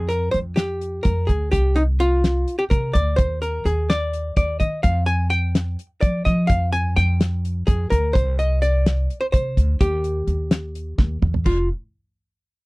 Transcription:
Already playing: upright bass F2, hollow-body jazz guitar G#4
0.09 hollow-body jazz guitar A#4, closed hi-hat
0.31 upright bass F2, hollow-body jazz guitar C5, closed hi-hat
0.56 hollow-body jazz guitar G4, snare, closed hi-hat
0.81 closed hi-hat
1.03 upright bass F2, hollow-body jazz guitar A#4, kick, closed hi-hat
1.27 upright bass D2, hollow-body jazz guitar G#4, kick, closed hi-hat
1.52 upright bass C2, hollow-body jazz guitar G4, kick, closed hi-hat
1.76 hollow-body jazz guitar D#4, closed hi-hat
2.00 hollow-body jazz guitar F4, closed hi-hat
2.24 snare, closed hi-hat
2.48 closed hi-hat
2.59 hollow-body jazz guitar G4
2.70 upright bass C3, hollow-body jazz guitar A#4, kick, closed hi-hat
2.93 upright bass D2, hollow-body jazz guitar D5, kick, closed hi-hat
3.16 upright bass D#2, hollow-body jazz guitar C5, kick, closed hi-hat
3.42 hollow-body jazz guitar A#4, closed hi-hat
3.65 upright bass D#2, hollow-body jazz guitar G#4, closed hi-hat
3.90 hollow-body jazz guitar D5, snare, closed hi-hat
4.13 closed hi-hat
4.37 upright bass D#2, hollow-body jazz guitar D5, kick, closed hi-hat
4.60 upright bass D#3, hollow-body jazz guitar D#5, kick, closed hi-hat
4.83 upright bass F2, hollow-body jazz guitar F5, kick, closed hi-hat
5.06 hollow-body jazz guitar G#5, closed hi-hat
5.30 hollow-body jazz guitar G5, closed hi-hat
5.55 snare, closed hi-hat
5.79 closed hi-hat
6.01 upright bass F3, hollow-body jazz guitar D5, kick, closed hi-hat
6.25 upright bass F3, hollow-body jazz guitar D#5, kick, closed hi-hat
6.47 upright bass F2, hollow-body jazz guitar F5, kick, closed hi-hat
6.72 hollow-body jazz guitar G#5, closed hi-hat
6.96 upright bass F2, hollow-body jazz guitar G5, snare, closed hi-hat
7.21 snare, closed hi-hat
7.45 closed hi-hat
7.67 upright bass F2, hollow-body jazz guitar G#4, kick, closed hi-hat
7.90 upright bass D2, hollow-body jazz guitar A#4, kick, closed hi-hat
8.13 upright bass C2, hollow-body jazz guitar C5, kick, closed hi-hat
8.39 hollow-body jazz guitar D#5, closed hi-hat
8.62 hollow-body jazz guitar D5, closed hi-hat
8.86 snare, closed hi-hat
9.10 closed hi-hat
9.21 hollow-body jazz guitar C5
9.32 upright bass C3, hollow-body jazz guitar C5, kick, closed hi-hat
9.57 upright bass D2, kick, closed hi-hat
9.81 upright bass D#2, hollow-body jazz guitar G4, kick, closed hi-hat
10.04 closed hi-hat
10.27 upright bass D#2, closed hi-hat
10.51 snare, closed hi-hat
10.75 closed hi-hat
10.98 upright bass D#2, kick, snare
11.22 upright bass E2, mid tom
11.34 floor tom
11.46 upright bass F1, hollow-body jazz guitar F4, kick, crash

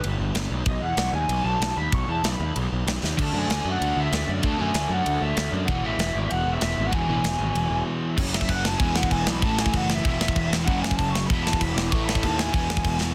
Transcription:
0.04 picked electric bass G1, ride
0.19 picked electric bass G1
0.35 picked electric bass G1, snare, ride
0.50 picked electric bass B1
0.66 picked electric bass B1, lead electric guitar D#5, kick, ride
0.81 picked electric bass E2, lead electric guitar F#5
0.97 picked electric bass B1, snare, ride
1.12 picked electric bass D#2, lead electric guitar G#5
1.28 picked electric bass B1, ride
1.44 picked electric bass B1, lead electric guitar A5
1.60 picked electric bass B1, snare, ride
1.77 picked electric bass D#2, lead electric guitar B5
1.92 picked electric bass B1, lead electric guitar C#6, kick, ride
2.08 picked electric bass E2, lead electric guitar A5
2.23 picked electric bass B1, lead electric guitar B5, snare, ride
2.39 picked electric bass D#2
2.56 picked electric bass B1, ride
2.72 picked electric bass B1
2.87 picked electric bass B1, snare, ride
3.03 picked electric bass D#2, snare
3.17 picked electric bass D2, overdriven electric guitar D3 A3 D4, kick, crash
3.22 lead electric guitar A5
3.32 picked electric bass F#2, overdriven electric guitar D3 A3 D4
3.37 lead electric guitar G#5
3.48 picked electric bass D2, snare, ride
3.65 picked electric bass F#2
3.70 lead electric guitar F#5
3.81 picked electric bass D2, ride
3.96 picked electric bass D2
4.00 lead electric guitar E5
4.12 picked electric bass D2, snare, ride
4.28 picked electric bass F#2, lead electric guitar D5
4.43 picked electric bass D2, overdriven electric guitar D3 A3 D4, lead electric guitar A5, kick, ride
4.57 picked electric bass F#2, overdriven electric guitar D3 A3 D4, lead electric guitar G#5
4.74 picked electric bass D2, snare, ride
4.89 picked electric bass F#2, lead electric guitar F#5
5.06 picked electric bass D2, ride
5.21 picked electric bass D2, lead electric guitar E5
5.37 picked electric bass D2, snare, ride
5.51 picked electric bass F#2, lead electric guitar D5
5.66 picked electric bass E1, overdriven electric guitar E2 B2 E3, lead electric guitar F#5, kick, ride
5.82 picked electric bass A1, overdriven electric guitar E2 B2 E3, lead electric guitar E5
5.98 picked electric bass E1, snare, ride
6.15 picked electric bass G#1, lead electric guitar D5
6.23 lead electric guitar E5
6.29 picked electric bass E1, lead electric guitar F#5, ride
6.45 picked electric bass E1
6.53 lead electric guitar E5
6.61 picked electric bass E1, snare, ride
6.78 picked electric bass G#1
6.86 lead electric guitar F#5
6.92 picked electric bass E1, overdriven electric guitar E2 B2 E3, lead electric guitar G#5, kick, ride
7.08 picked electric bass A1, overdriven electric guitar E2 B2 E3
7.24 picked electric bass E1, snare, ride
7.39 picked electric bass G#1
7.55 picked electric bass E1, ride
7.70 picked electric bass E1
8.17 picked electric bass F#1, overdriven electric guitar F#2 C#3 F#3, lead electric guitar C#5, kick, crash
8.33 lead electric guitar E5, snare
8.41 kick
8.49 picked electric bass F#1, lead electric guitar F#5, kick, crash
8.64 lead electric guitar A5, snare
8.78 picked electric bass E1, overdriven electric guitar E2 B2, lead electric guitar G#5, kick, crash
8.82 overdriven electric guitar E3
8.94 lead electric guitar F#5, snare
9.03 kick
9.10 picked electric bass E1, lead electric guitar G#5, kick, crash
9.26 picked electric bass B1, lead electric guitar B5, snare
9.42 picked electric bass A1, overdriven electric guitar A2 E3 A3, lead electric guitar A5, kick, crash
9.59 lead electric guitar G#5, snare
9.66 kick
9.73 picked electric bass F#1, lead electric guitar F#5, kick, crash
9.89 lead electric guitar E5, snare
10.04 picked electric bass E1, overdriven electric guitar E2 B2 E3, lead electric guitar E5, kick, crash
10.21 snare
10.28 kick
10.36 picked electric bass E1, kick, crash
10.51 picked electric bass E1, snare
10.65 picked electric bass F#1, overdriven electric guitar F#2 C#3, lead electric guitar F#5, kick, crash
10.70 overdriven electric guitar F#3
10.81 lead electric guitar G#5, snare
10.91 kick
10.95 picked electric bass F#1, lead electric guitar A5, kick
11.00 crash
11.10 lead electric guitar C#6
11.15 snare
11.27 picked electric bass E1, overdriven electric guitar E2, lead electric guitar B5, kick
11.31 overdriven electric guitar B2 E3, crash
11.42 lead electric guitar A5
11.47 snare
11.53 kick
11.61 picked electric bass E1, lead electric guitar B5, kick, crash
11.74 picked electric bass E1, lead electric guitar D6, snare
11.90 picked electric bass A1, overdriven electric guitar A2 E3, lead electric guitar C#6, kick, crash
11.95 overdriven electric guitar A3
12.05 lead electric guitar B5
12.09 snare
12.15 kick
12.22 picked electric bass D#2, lead electric guitar A5, kick, crash
12.38 lead electric guitar G#5, snare
12.53 picked electric bass E1, overdriven electric guitar E2 B2, lead electric guitar G#5, kick, crash
12.58 overdriven electric guitar E3
12.70 snare
12.77 kick
12.84 picked electric bass E1, kick, crash
13.00 picked electric bass E1, snare

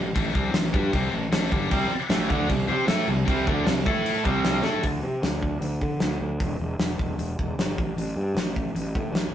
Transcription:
Already playing: fingered electric bass A1, distorted electric guitar A2 E3
0.15 fingered electric bass A1, distorted electric guitar A2 E3 A3, kick, crash
0.34 fingered electric bass C2, distorted electric guitar C3 G3 C4, kick
0.53 fingered electric bass A1, distorted electric guitar A2 E3, snare, crash
0.73 fingered electric bass G2, distorted electric guitar G3 D4 G4, kick
0.93 fingered electric bass C2, distorted electric guitar C3 G3 C4, kick, crash
1.13 fingered electric bass A1, distorted electric guitar A2 E3
1.32 fingered electric bass A1, distorted electric guitar A2 E3 A3, snare, crash
1.51 fingered electric bass G1, distorted electric guitar G2 D3 G3, kick
1.70 fingered electric bass C2, distorted electric guitar C3 G3 C4, kick, crash
1.91 muted fingered electric bass stroke, muted distorted electric guitar stroke
2.09 fingered electric bass A1, distorted electric guitar A2 E3 A3, snare, crash
2.27 fingered electric bass D2, distorted electric guitar D3 A3 D4, kick
2.47 fingered electric bass C2, distorted electric guitar C3 G3, kick, crash
2.67 fingered electric bass C3, distorted electric guitar C4 G4 C5
2.87 fingered electric bass A2, distorted electric guitar A3 E4 A4, snare, crash
3.07 fingered electric bass C2, distorted electric guitar C3 G3
3.25 fingered electric bass C2, distorted electric guitar C3 G3 C4, kick, crash
3.45 fingered electric bass D2, distorted electric guitar D3 A3 D4, kick
3.65 fingered electric bass C2, distorted electric guitar C3 G3, snare, crash
3.86 fingered electric bass A2, distorted electric guitar A3 E4 A4, kick
4.06 crash
4.24 fingered electric bass C2, distorted electric guitar C3 G3 C4, kick
4.45 snare, crash
4.62 fingered electric bass A2, distorted electric guitar A3 E4 A4, snare
4.83 fingered electric bass D2, kick, open hi-hat
5.03 fingered electric bass C3
5.22 fingered electric bass D2, snare, open hi-hat
5.43 kick
5.61 fingered electric bass D2, open hi-hat
5.81 fingered electric bass D3, kick
6.00 fingered electric bass D2, snare, open hi-hat
6.21 fingered electric bass D2
6.40 fingered electric bass E1, kick, open hi-hat
6.60 fingered electric bass E1
6.79 fingered electric bass E1, snare, open hi-hat
6.99 fingered electric bass E1, kick
7.18 fingered electric bass E1, open hi-hat
7.39 fingered electric bass E1, kick
7.58 fingered electric bass G1, snare, open hi-hat
7.78 fingered electric bass A1, kick
7.97 fingered electric bass A1, open hi-hat
8.16 fingered electric bass G2
8.35 fingered electric bass A1, snare, open hi-hat
8.56 kick
8.75 fingered electric bass A1, open hi-hat
8.95 fingered electric bass A2, kick
9.12 fingered electric bass A1, snare, open hi-hat
9.31 fingered electric bass B1

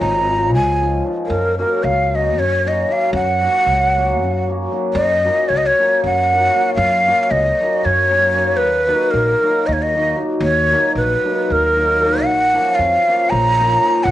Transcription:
Already playing: hammered dulcimer F3 G#3
0.00 upright bass G#1, ney A#5
0.30 hammered dulcimer F3 G#3 C#4 F4
0.55 upright bass C#2, ney G#5
0.80 hammered dulcimer F3 G#3 C#4 F4
1.04 hammered dulcimer F3 G#3 C#4 F4
1.26 upright bass F#2, ney A#4
1.58 hammered dulcimer F#3 A#3 C#4 F#4, ney A#4
1.84 upright bass C#2, ney F5
2.13 hammered dulcimer F#3 A#3 C#4 F#4, ney D#5
2.39 upright bass F#2, ney C#5
2.64 hammered dulcimer F#3 A#3 C#4 F#4, ney D#5
2.88 hammered dulcimer F#3 A#3 C#4 F#4
2.92 ney F5
3.13 upright bass F#2, ney F#5
3.41 hammered dulcimer F#3 A#3 C#4 F#4
3.66 upright bass C#2
3.96 hammered dulcimer F#3 A#3 C#4 F#4
4.22 upright bass F#2
4.48 hammered dulcimer F#3 A#3 C#4 F#4
4.71 hammered dulcimer F#3 A#3 C#4 F#4
4.94 upright bass F#2, ney D#5
5.24 hammered dulcimer F#3 A#3 C#4 F#4 A#4
5.49 upright bass C#2, ney C#5
5.57 ney D#5
5.66 ney C#5
5.79 hammered dulcimer F#3 A#3 C#4 F#4 A#4
6.04 upright bass F#2, ney F#5
6.32 hammered dulcimer F#3 A#3 C#4 F#4 A#4
6.55 hammered dulcimer F#3 A#3 C#4 F#4 A#4
6.75 upright bass F#2, ney F5
7.07 hammered dulcimer F#3 A#3 C#4 F#4 A#4
7.23 ney F5
7.31 upright bass C#2, ney D#5
7.60 hammered dulcimer F#3 A#3 C#4 F#4 A#4
7.85 upright bass F#2, ney C#5
8.10 hammered dulcimer F#3 A#3 C#4 F#4 A#4
8.33 hammered dulcimer F#3 A#3 C#4 F#4 A#4
8.57 upright bass D#2, ney B4
8.87 hammered dulcimer F#3 A#3 D#4 F#4 A#4
9.11 upright bass A#1, ney A#4
9.41 hammered dulcimer F#3 A#3 D#4 F#4 A#4
9.67 upright bass D#2, ney D#5
9.73 ney C#5
9.82 ney D#5
9.94 hammered dulcimer F#3 A#3 D#4 F#4 A#4
10.16 hammered dulcimer F#3 A#3 D#4 F#4 A#4
10.40 upright bass D#2, ney C#5
10.71 hammered dulcimer F#3 A#3 D#4 F#4 A#4
10.95 upright bass A#1, ney B4
11.23 hammered dulcimer F#3 A#3 D#4 F#4 A#4
11.50 upright bass D#2, ney A#4
11.76 hammered dulcimer F#3 A#3 D#4 F#4 A#4
12.01 hammered dulcimer F#3 A#3 D#4 F#4 A#4
12.24 upright bass A#1, ney F#5
12.53 hammered dulcimer F3 A#3 C#4 F4 A#4
12.75 upright bass F2, ney F5
13.08 hammered dulcimer F3 A#3 C#4 F4 A#4
13.30 upright bass A#1, ney A#5
13.59 hammered dulcimer F3 A#3 C#4 F4 A#4
13.80 hammered dulcimer F3 A#3 C#4 F4 A#4
14.04 upright bass A#1, ney F#5

